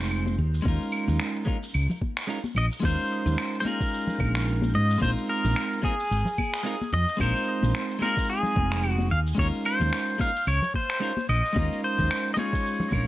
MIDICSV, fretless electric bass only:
0, 0, Header, 1, 2, 480
1, 0, Start_track
1, 0, Tempo, 545455
1, 576, Time_signature, 4, 2, 24, 8
1, 11504, End_track
2, 0, Start_track
2, 0, Title_t, "Fretless electric bass"
2, 0, Program_c, 0, 35
2, 0, Note_on_c, 0, 29, 90
2, 337, Note_on_c, 0, 39, 75
2, 350, Note_off_c, 0, 29, 0
2, 525, Note_off_c, 0, 39, 0
2, 574, Note_on_c, 0, 39, 88
2, 677, Note_off_c, 0, 39, 0
2, 950, Note_on_c, 0, 39, 94
2, 1030, Note_off_c, 0, 39, 0
2, 1535, Note_on_c, 0, 37, 86
2, 1638, Note_off_c, 0, 37, 0
2, 2252, Note_on_c, 0, 34, 77
2, 2356, Note_off_c, 0, 34, 0
2, 2494, Note_on_c, 0, 39, 96
2, 2597, Note_off_c, 0, 39, 0
2, 2867, Note_on_c, 0, 39, 99
2, 2948, Note_off_c, 0, 39, 0
2, 3694, Note_on_c, 0, 34, 89
2, 4173, Note_on_c, 0, 44, 72
2, 4186, Note_off_c, 0, 34, 0
2, 4363, Note_off_c, 0, 44, 0
2, 4414, Note_on_c, 0, 34, 86
2, 4517, Note_off_c, 0, 34, 0
2, 4792, Note_on_c, 0, 34, 88
2, 4871, Note_off_c, 0, 34, 0
2, 5377, Note_on_c, 0, 32, 79
2, 5478, Note_off_c, 0, 32, 0
2, 6095, Note_on_c, 0, 41, 74
2, 6198, Note_off_c, 0, 41, 0
2, 6335, Note_on_c, 0, 34, 91
2, 6437, Note_off_c, 0, 34, 0
2, 6712, Note_on_c, 0, 34, 92
2, 6791, Note_off_c, 0, 34, 0
2, 7536, Note_on_c, 0, 29, 91
2, 8017, Note_on_c, 0, 39, 69
2, 8030, Note_off_c, 0, 29, 0
2, 8205, Note_off_c, 0, 39, 0
2, 8255, Note_on_c, 0, 39, 91
2, 8357, Note_off_c, 0, 39, 0
2, 8630, Note_on_c, 0, 39, 92
2, 8710, Note_off_c, 0, 39, 0
2, 9212, Note_on_c, 0, 37, 90
2, 9316, Note_off_c, 0, 37, 0
2, 9933, Note_on_c, 0, 34, 74
2, 10037, Note_off_c, 0, 34, 0
2, 10173, Note_on_c, 0, 39, 89
2, 10276, Note_off_c, 0, 39, 0
2, 10547, Note_on_c, 0, 39, 96
2, 10628, Note_off_c, 0, 39, 0
2, 11373, Note_on_c, 0, 34, 88
2, 11504, Note_off_c, 0, 34, 0
2, 11504, End_track
0, 0, End_of_file